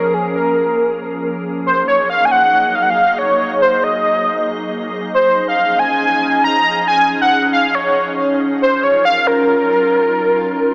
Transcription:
Already playing: F3 A#3 C#4 G#4 A#4
0.14 G#4
0.36 A#4
1.66 F#3 D#4 C5 D#5
1.88 C#5
2.10 F5
2.25 G#5
2.31 F#5
2.75 F5
2.83 F#5
2.90 F5
3.18 C#5
3.62 C5
3.84 D#5
5.14 F3 C#4 C5
5.48 F5
5.79 G#5
6.44 A#5
6.88 G#5
7.22 F#5
7.53 F5
7.75 C#5
8.62 F#3 F4 A#4 C5
8.83 C#5
9.05 F5
9.27 A#4

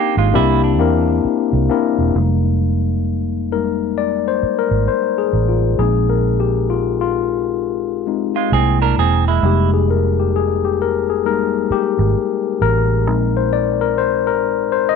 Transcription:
Already playing: A#3 C4 D4 D#4 G4
0.17 G#1 G#3 F4
0.34 C2 G3 A#3 C4 D4 E4 G4
0.64 D4
0.79 E2 A#3 C4 D4 E4 A#4
1.25 muted fingered electric bass stroke
1.53 C2
1.69 A#3 C4 D4 E4 A#4
1.98 E1
2.15 F1 G3 G#3 A#3 D#4
3.52 G3 G#3 A#3 D#4 A#4
3.98 D5
4.28 C5
4.43 muted fingered electric bass stroke
4.59 A#4
4.71 G#1
4.88 C5
5.18 G#4
5.33 A1
5.49 F4
5.79 A#1 G#3 C4 D#4 G#4
6.10 A#4
6.40 G4
6.70 F4
7.01 F4
8.07 G#3 C4 D#4
8.36 G#3 F4
8.52 C2 G#3 A#3 C4 E4 G#4
8.82 D4 A#4
8.97 E1 C4 G#4
9.28 G#3 E4
9.43 F1 G3 G#3 A#3 D#4 G4
9.74 G#4
9.91 A#4
10.20 G4
10.36 G#4
10.65 G4
10.82 A#4
11.10 G#4
11.25 G3 G#3 A#3 D#4 A#4
11.70 G4, muted fingered electric bass stroke
11.99 G#1
12.61 A1 A#4
13.07 A#1 G#3 C4 D#4
13.37 C5
13.53 D5
13.81 A#4
13.98 C5
14.27 A#4
14.72 C5
14.89 D#5

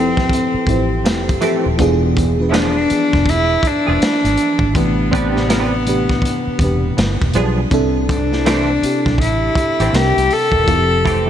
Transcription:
Already playing: F1 F3 C4 E4 G4 A4 B4
0.17 kick, snare
0.29 kick, closed hi-hat
0.54 muted fingered electric bass stroke
0.67 A1 F3 C4 E4 G4 C5, kick, closed hi-hat
1.04 F1, muted clean electric guitar stroke, snare, closed hi-hat
1.29 kick, closed hi-hat
1.41 E3 F3 A3 C4 E4 G4 A4, closed hi-hat
1.66 D#1
1.78 E1 E3 B3 D4 F4 G#4, kick, closed hi-hat
2.17 kick, closed hi-hat
2.38 E3 B3 D4 F4 B4
2.49 F3 B3 D4 E4 G#4
2.54 D4, snare, closed hi-hat
2.89 E3 F3 B3 D4 G#4, muted fingered electric bass stroke, closed hi-hat
3.13 F1, kick, snare
3.26 E1 E4, kick, closed hi-hat
3.63 kick, closed hi-hat
3.67 D4
3.87 E1 F3 B3 D4 G#4
4.02 muted fingered electric bass stroke, snare, closed hi-hat
4.24 G#1, snare, closed hi-hat
4.37 closed hi-hat
4.59 G#1, kick
4.74 A1 A2 C3 E3 D4 G4 B4, kick, closed hi-hat
4.78 B3
5.11 C4 D4 G4 B4, kick, closed hi-hat
5.34 A2 C3 E3 D4 G4 B4, snare
5.49 C4 D4 G4 B4, snare, closed hi-hat
5.86 A2 C3 E3 D4 G4 B4, closed hi-hat
6.09 kick, snare
6.22 kick, closed hi-hat
6.47 muted fingered electric bass stroke
6.59 E1 A2 C3 E3 D4, kick, closed hi-hat
6.63 G4 B4
6.97 G1, muted clean electric guitar stroke, snare, closed hi-hat
7.21 E1, kick, snare
7.34 B1 F3 G3 B3 D4 F4 G#4 B4, closed hi-hat
7.71 C2 C3 C4 D4 E4 A4, kick, closed hi-hat
8.09 D4, kick, closed hi-hat
8.31 C3 C4 D4 E4 A4, snare
8.45 E3 A3 C4 G4, snare, closed hi-hat
8.81 C3 C4 D4 E4 G4, muted fingered electric bass stroke, closed hi-hat
9.06 B1, kick, snare
9.18 A1 E4, kick, closed hi-hat
9.55 kick, closed hi-hat
9.80 A1 E3 A3 C4 G4, closed hi-hat
9.93 C2 C3 C4 D4 E4 G4 A#4, snare, closed hi-hat
10.17 C2, closed hi-hat
10.30 A4, open hi-hat
10.52 E1, kick
10.66 F1 F3 C4 E4 G4 A4, kick, closed hi-hat
11.05 E3 A3 C4 G4, kick, closed hi-hat
11.26 F3

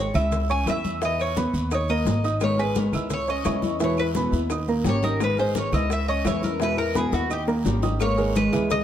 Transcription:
0.00 C#5
0.14 C#2 E4 E5 E6, high conga, low conga, short guiro, claves, maracas
0.31 high bongo, high conga, low conga, long guiro, maracas
0.49 C#4 C#5 G#5 C#6, high conga, maracas
0.66 E2 E4 E5 E6, high bongo, low bongo, high conga, short guiro, claves, maracas
0.84 high conga, short guiro, maracas
1.01 E3 E4 D#5 E5, high bongo, high conga, long guiro, maracas
1.19 C#5, high bongo, high conga, claves, maracas
1.36 B3 B4 B5, high bongo, high conga, short guiro, maracas
1.53 D#2, high conga, short guiro, maracas
1.71 D#4 C#5 D#5 D#6, high bongo, high conga, long guiro, claves, maracas
1.89 A#3 A#4 D#5 A#5, high bongo, high conga, maracas
2.05 G#1, high bongo, low bongo, high conga, short guiro, maracas
2.24 D#4 D#5 D#6, high bongo, short guiro, maracas
2.40 D#3 G#3 B3 D#4 A#4 C#5, high bongo, high conga, long guiro, claves, maracas
2.57 G#3 B3 D#4 G#4 A#4 B4 G#5, high conga, maracas
2.75 D#3 G#3 B3 D#4 A#4, high bongo, high conga, short guiro, maracas
2.92 C#2 B3 D#4 E4 A#4 E5 E6, high conga, low conga, short guiro, claves, maracas
3.10 C#5, muted nylon-string guitar stroke, high bongo, high conga, low conga, long guiro, maracas
3.27 C#4 C#5 D#5 C#6, high conga, maracas
3.44 E2 C#3 E3 G#3 C#4 E4 C#5 C#6, high bongo, low bongo, high conga, short guiro, claves, maracas
3.62 G#3 C#4 E4, high conga, short guiro, maracas
3.80 B2 E3 G#3 B3 E4 C#5 E5, high bongo, high conga, long guiro, maracas
3.97 G#3 B3 E4 B4, high bongo, high conga, claves, maracas
4.15 B2 E3 G#3 B3 E4 B4 B5, high bongo, high conga, short guiro, maracas
4.32 D#2 G#3 B3 E4, high conga, short guiro, maracas
4.50 D#4 D#5 D#6, muted nylon-string guitar stroke, high bongo, high conga, long guiro, claves, maracas
4.67 A#3 A#4 A#5, high bongo, high conga, maracas
4.84 G#1 D#3 G3 C#4 G4, high bongo, low bongo, high conga, short guiro, maracas
4.89 C#5
5.02 G3 C#4 D#4 G4 A#4 D#5 D#6, high bongo, high conga, short guiro, maracas
5.19 D#3 G#3 B3 D#4 A#4, high bongo, high conga, long guiro, claves, maracas
5.24 B4
5.37 G#3 B3 D#4 G#4 A#4 C5 G#5, high conga, maracas
5.55 D#3 G#3 B3 D#4 A#4 C#5, high bongo, high conga, short guiro, maracas
5.72 C#2 B3 D#4 E4 A#4 D#5 E5 E6, high conga, low conga, short guiro, claves, maracas
5.90 E5, muted nylon-string guitar stroke, high bongo, high conga, long guiro, maracas
6.08 C#4 C#5 D#5 C#6, high conga, maracas
6.24 E2 C#3 E3 G#3 C#4 E4 C#5 E5 E6, high bongo, low bongo, high conga, short guiro, claves, maracas
6.42 G#3 C#4 E4 A#4, high conga, short guiro, maracas
6.59 B2 E3 G#3 B3 E4 B4 E5, high bongo, high conga, long guiro, maracas
6.77 G#3 B3 E4 A#4, high bongo, high conga, claves, maracas
6.94 B2 E3 G#3 B3 E4 G#4 B4 B5, high bongo, high conga, short guiro, maracas
7.12 D#2 G#3 B3 E4 F#4, high bongo, high conga, short guiro, maracas
7.30 D#4 G4 D#5 D#6, muted nylon-string guitar stroke, high conga, long guiro, claves, maracas
7.47 A#3 A#4 A#5, high bongo, high conga, maracas
7.64 G#1 D#3 G3 C#4 G4, low bongo, high conga, short guiro, maracas
7.82 G3 C#4 D#4 G4 D#5 D#6, low bongo, high conga, short guiro, maracas
7.99 D#3 G#3 A#3 B3 D#4 A#4 C#5, cowbell, high conga, long guiro, claves, maracas
8.17 G#3 B3 D#4 G#4 A#4, high conga, maracas
8.35 D#3 G#3 B3 D#4 A#4 B4, cowbell, high conga, short guiro, maracas
8.52 C#2 E3 B3 D#4 E4 G#4 A#4, cowbell, high conga, low conga, short guiro, claves, maracas
8.70 G#3 D#5, muted nylon-string guitar stroke, cowbell, high conga, low conga, long guiro, maracas

